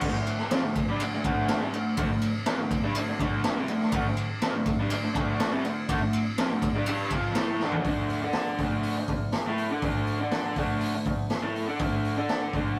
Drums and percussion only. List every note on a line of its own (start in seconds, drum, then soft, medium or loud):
0.01 kick loud
0.01 crash loud
0.27 ride medium
0.38 snare soft
0.51 snare loud
0.51 ride loud
0.76 kick medium
0.76 ride medium
1.00 ride medium
1.24 kick medium
1.24 ride medium
1.48 snare loud
1.48 ride loud
1.73 ride medium
1.97 kick loud
1.97 ride loud
2.22 ride medium
2.46 snare loud
2.46 ride loud
2.71 kick medium
2.71 ride medium
2.95 ride loud
3.20 kick medium
3.20 ride medium
3.44 snare loud
3.44 ride medium
3.68 ride medium
3.80 snare soft
3.92 kick loud
3.92 ride loud
4.17 ride medium
4.42 snare loud
4.42 ride medium
4.66 kick medium
4.66 ride medium
4.90 ride loud
5.15 kick medium
5.15 ride medium
5.40 snare loud
5.40 ride medium
5.65 ride medium
5.89 kick loud
5.89 ride loud
6.13 ride medium
6.38 snare loud
6.38 ride loud
6.62 kick medium
6.62 ride medium
6.86 ride loud
7.10 kick medium
7.10 ride medium
7.35 snare loud
7.35 ride medium
7.60 snare medium
7.72 floor tom medium
7.85 kick loud
7.85 open hi-hat medium
8.09 open hi-hat medium
8.33 snare loud
8.33 open hi-hat medium
8.58 kick medium
8.58 open hi-hat medium
8.83 open hi-hat medium
9.08 kick medium
9.08 open hi-hat medium
9.32 snare loud
9.32 open hi-hat medium
9.58 open hi-hat medium
9.82 kick loud
9.82 open hi-hat medium
10.07 open hi-hat medium
10.31 snare loud
10.31 open hi-hat medium
10.56 kick medium
10.56 open hi-hat medium
10.81 open hi-hat medium
11.05 kick medium
11.05 open hi-hat medium
11.30 snare loud
11.30 open hi-hat medium
11.56 open hi-hat soft
11.79 kick loud
11.79 open hi-hat medium
12.05 open hi-hat soft
12.29 snare loud
12.29 open hi-hat medium
12.53 kick medium
12.53 open hi-hat medium